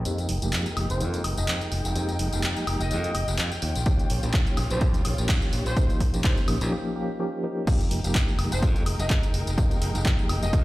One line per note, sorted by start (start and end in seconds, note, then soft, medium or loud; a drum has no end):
0.05 0.26 F2 medium
0.05 0.39 F3 medium
0.05 0.39 G#3 medium
0.05 3.59 G#3 medium
0.05 0.39 A#3 medium
0.05 0.39 D#4 medium
0.05 3.59 D#4 medium
0.05 0.39 G4 medium
0.05 3.59 A#4 medium
0.05 6.68 G5 medium
0.05 closed hi-hat medium
0.05 tambourine medium
0.18 closed hi-hat soft
0.18 tambourine soft
0.29 0.40 F1 loud
0.29 open hi-hat loud
0.41 0.51 F1 medium
0.41 1.93 F3 medium
0.41 1.93 G#3 medium
0.41 1.93 A#3 medium
0.41 1.93 D#4 medium
0.41 1.94 G4 medium
0.41 closed hi-hat soft
0.41 tambourine medium
0.53 0.64 F2 medium
0.53 clap loud
0.53 closed hi-hat medium
0.53 tambourine medium
0.66 closed hi-hat soft
0.66 tambourine soft
0.77 0.88 F1 medium
0.77 open hi-hat medium
0.77 high woodblock medium
0.90 1.02 F1 medium
0.90 1.03 C5 medium
0.90 closed hi-hat soft
0.90 tambourine medium
1.01 1.21 F2 medium
1.01 closed hi-hat medium
1.01 tambourine medium
1.14 closed hi-hat soft
1.14 tambourine soft
1.24 1.35 F1 medium
1.24 open hi-hat loud
1.24 high woodblock medium
1.37 1.46 F1 medium
1.37 1.44 D#5 medium
1.37 closed hi-hat soft
1.37 tambourine medium
1.48 1.59 F2 medium
1.48 1.57 D#5 medium
1.48 clap loud
1.48 closed hi-hat medium
1.48 tambourine medium
1.61 closed hi-hat soft
1.61 tambourine soft
1.72 1.83 F1 medium
1.72 open hi-hat medium
1.85 1.94 F1 medium
1.85 closed hi-hat soft
1.85 tambourine medium
1.95 2.16 F2 medium
1.95 2.29 F3 medium
1.95 2.29 G#3 medium
1.95 2.30 A#3 medium
1.95 2.30 D#4 medium
1.95 2.30 G4 medium
1.95 closed hi-hat medium
1.95 tambourine medium
2.09 closed hi-hat soft
2.09 tambourine soft
2.19 2.30 F1 loud
2.19 open hi-hat loud
2.32 2.42 F1 medium
2.32 3.61 F3 medium
2.32 3.61 G#3 medium
2.32 3.61 A#3 medium
2.32 3.61 D#4 medium
2.32 3.62 G4 medium
2.32 closed hi-hat soft
2.32 tambourine medium
2.43 2.54 F2 medium
2.43 clap loud
2.43 closed hi-hat medium
2.43 tambourine medium
2.57 closed hi-hat soft
2.57 tambourine soft
2.67 2.78 F1 medium
2.67 open hi-hat medium
2.67 high woodblock medium
2.80 2.92 F1 loud
2.80 3.28 D#5 medium
2.80 closed hi-hat soft
2.80 tambourine medium
2.91 3.11 F2 medium
2.91 closed hi-hat medium
2.91 tambourine medium
3.04 closed hi-hat soft
3.04 tambourine soft
3.15 3.26 F1 medium
3.15 open hi-hat loud
3.15 high woodblock medium
3.28 3.37 F1 loud
3.28 closed hi-hat soft
3.28 tambourine medium
3.38 3.49 F2 medium
3.38 clap loud
3.38 closed hi-hat medium
3.38 tambourine medium
3.52 closed hi-hat soft
3.52 tambourine soft
3.62 3.73 D#2 medium
3.62 6.69 F4 medium
3.62 6.69 C#5 medium
3.62 open hi-hat loud
3.75 3.85 A#1 medium
3.75 closed hi-hat soft
3.75 tambourine medium
3.86 4.07 D#2 loud
3.86 4.20 F3 medium
3.86 4.20 A#3 medium
3.86 4.20 C#4 medium
3.86 4.20 D#4 medium
3.86 4.20 G4 medium
3.86 kick loud
3.86 closed hi-hat medium
3.86 tambourine medium
3.99 closed hi-hat soft
3.99 tambourine soft
4.10 4.21 A#1 loud
4.10 open hi-hat loud
4.22 4.32 A#1 medium
4.22 4.79 F3 medium
4.22 4.80 A#3 medium
4.22 4.80 C#4 medium
4.22 4.80 D#4 medium
4.22 4.80 G4 medium
4.22 closed hi-hat soft
4.22 tambourine medium
4.33 4.45 D#2 medium
4.33 kick loud
4.33 clap loud
4.33 closed hi-hat medium
4.33 tambourine medium
4.47 closed hi-hat soft
4.47 tambourine soft
4.57 4.69 A#1 medium
4.57 open hi-hat medium
4.57 high woodblock medium
4.70 4.81 A#1 loud
4.70 4.80 C5 medium
4.70 closed hi-hat soft
4.70 tambourine medium
4.81 5.02 D#2 medium
4.81 5.16 G4 medium
4.81 kick loud
4.81 closed hi-hat medium
4.81 tambourine soft
4.94 closed hi-hat soft
4.94 tambourine soft
5.05 5.16 A#1 medium
5.05 open hi-hat loud
5.05 high woodblock medium
5.18 5.27 A#1 loud
5.18 5.75 F3 medium
5.18 5.75 A#3 medium
5.18 5.75 C#4 medium
5.18 5.75 D#4 medium
5.18 5.75 G4 medium
5.18 closed hi-hat soft
5.18 tambourine medium
5.29 5.40 D#2 medium
5.29 kick loud
5.29 clap loud
5.29 closed hi-hat medium
5.29 tambourine medium
5.42 closed hi-hat soft
5.42 tambourine soft
5.53 5.64 A#1 medium
5.53 open hi-hat loud
5.66 5.75 A#1 medium
5.66 5.75 C5 medium
5.66 closed hi-hat soft
5.66 tambourine medium
5.76 5.97 D#2 loud
5.76 6.10 F3 medium
5.76 6.10 A#3 medium
5.76 6.11 C#4 medium
5.76 6.11 D#4 medium
5.76 6.11 G4 medium
5.76 5.92 C5 medium
5.76 kick loud
5.76 closed hi-hat medium
5.76 tambourine medium
5.90 closed hi-hat soft
5.90 tambourine soft
6.00 6.12 A#1 loud
6.00 kick medium
6.00 open hi-hat loud
6.13 6.22 A#1 medium
6.13 6.22 F3 medium
6.13 6.22 A#3 medium
6.13 6.23 C#4 medium
6.13 6.23 D#4 medium
6.13 6.23 G4 medium
6.13 closed hi-hat soft
6.13 tambourine medium
6.24 6.35 D#2 medium
6.24 6.58 F3 medium
6.24 6.58 A#3 medium
6.24 6.58 C#4 medium
6.24 6.58 D#4 medium
6.24 6.58 G4 medium
6.24 6.39 C5 medium
6.24 kick loud
6.24 clap loud
6.24 closed hi-hat medium
6.24 tambourine medium
6.37 closed hi-hat soft
6.37 tambourine soft
6.48 6.59 A#1 medium
6.48 open hi-hat medium
6.48 high woodblock medium
6.61 6.72 A#1 loud
6.61 6.70 F3 medium
6.61 6.70 A#3 medium
6.61 6.70 C#4 medium
6.61 6.70 D#4 medium
6.61 6.71 G4 medium
6.61 closed hi-hat soft
6.61 tambourine medium
6.71 6.94 F3 medium
6.71 6.94 A#3 medium
6.71 6.94 C#4 medium
6.71 6.94 D#4 medium
6.71 6.94 G4 medium
6.95 7.18 F3 medium
6.95 7.18 A#3 medium
6.95 7.18 C#4 medium
6.95 7.18 D#4 medium
6.95 7.18 G4 medium
7.19 7.42 F3 medium
7.19 7.42 A#3 medium
7.19 7.42 C#4 medium
7.19 7.42 D#4 medium
7.19 7.42 G4 medium
7.43 7.65 F3 medium
7.43 7.66 A#3 medium
7.43 7.66 C#4 medium
7.43 7.66 D#4 medium
7.43 7.66 G4 medium
7.67 7.88 F2 loud
7.67 8.01 F3 medium
7.67 8.01 G#3 medium
7.67 10.64 G#3 medium
7.67 8.01 A#3 medium
7.67 8.01 D#4 medium
7.67 10.64 D#4 medium
7.67 8.01 G4 medium
7.67 10.64 A#4 medium
7.67 10.64 G5 medium
7.67 kick loud
7.67 closed hi-hat medium
7.67 crash loud
7.67 tambourine medium
7.80 closed hi-hat soft
7.80 tambourine soft
7.91 8.02 F1 loud
7.91 open hi-hat loud
8.03 8.13 F1 medium
8.03 9.55 F3 medium
8.03 9.55 G#3 medium
8.03 9.55 A#3 medium
8.03 9.55 D#4 medium
8.03 9.55 G4 medium
8.03 closed hi-hat soft
8.03 tambourine medium
8.15 8.26 F2 medium
8.15 kick loud
8.15 clap loud
8.15 closed hi-hat medium
8.15 tambourine medium
8.28 tambourine soft
8.39 8.50 F1 medium
8.39 open hi-hat medium
8.39 high woodblock medium
8.51 8.64 F1 loud
8.51 8.65 C5 medium
8.51 closed hi-hat medium
8.51 tambourine medium
8.62 8.83 F2 medium
8.62 kick loud
8.62 closed hi-hat medium
8.76 closed hi-hat soft
8.76 tambourine soft
8.86 8.97 F1 medium
8.86 open hi-hat loud
8.86 high woodblock medium
8.99 9.08 F1 loud
8.99 9.06 D#5 medium
8.99 closed hi-hat soft
8.99 tambourine medium
9.10 9.21 F2 medium
9.10 9.19 D#5 medium
9.10 kick loud
9.10 clap loud
9.10 closed hi-hat medium
9.10 tambourine medium
9.23 closed hi-hat medium
9.23 tambourine soft
9.34 9.45 F1 medium
9.34 open hi-hat loud
9.47 9.56 F1 medium
9.47 closed hi-hat soft
9.47 tambourine medium
9.57 9.78 F2 loud
9.57 9.91 F3 medium
9.57 9.91 G#3 medium
9.57 9.92 A#3 medium
9.57 9.92 G4 medium
9.57 kick loud
9.57 closed hi-hat medium
9.57 tambourine medium
9.71 closed hi-hat soft
9.71 tambourine soft
9.82 9.93 F1 loud
9.82 open hi-hat loud
9.94 10.04 F1 medium
9.94 10.64 F3 medium
9.94 10.64 G#3 medium
9.94 10.64 A#3 medium
9.94 10.64 D#4 medium
9.94 10.64 G4 medium
9.94 closed hi-hat soft
9.94 tambourine medium
10.05 10.16 F2 medium
10.05 kick loud
10.05 clap loud
10.05 closed hi-hat medium
10.05 tambourine medium
10.19 tambourine soft
10.29 10.40 F1 medium
10.29 open hi-hat loud
10.29 high woodblock medium
10.42 10.55 F1 loud
10.42 10.64 D#5 medium
10.42 closed hi-hat medium
10.42 tambourine medium
10.53 10.64 F2 medium
10.53 kick loud
10.53 closed hi-hat medium
10.53 tambourine medium